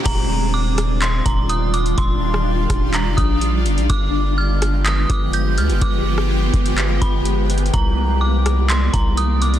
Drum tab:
CC |x-----------------------------------------------|------------------------------------------------|------------------------------------------------|------------------------------------------------|
HH |x-----------------x-----x-----x-----x-----x--x--|x-----------------x-----x-----x-----x-----x--x--|x-----------------x-----x-----x-----x-----x--x--|x-----------------x--x--x-----x-----x-----x-x-x-|
CP |------------------------x-----------------------|------------------------x-----------------------|------------------------x-----------------------|------------------------x-----------------------|
SD |------------------r-----------------------------|---------r--------r-----------------------------|------------------r-----------------------------|---------r--------------------------------------|
BD |o-----------------------------o-----------------|o-----------------o-----------o-----------------|o-----------------------------o-----------------|o-----------------o-----------o-----------------|

CC |------------------------------------------------|
HH |x-----------------x-----x-----x-----x-----x--x--|
CP |------------------------x-----------------------|
SD |------------------r-----------------------------|
BD |o-----------------------------o-----------------|